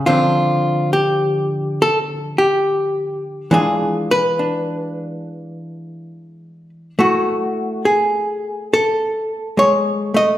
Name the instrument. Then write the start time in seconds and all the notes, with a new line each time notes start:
hollow-body jazz guitar
0.06 D3 F3 C4 D4 F4
0.93 G4
1.82 A4
2.38 G4
3.51 E3 G#3 D4 F4 G#4
4.11 B4
4.39 D4
6.99 A3 E4 F#4
7.85 G#4
8.74 A4
9.57 G#3 C#5
10.14 A3 D#5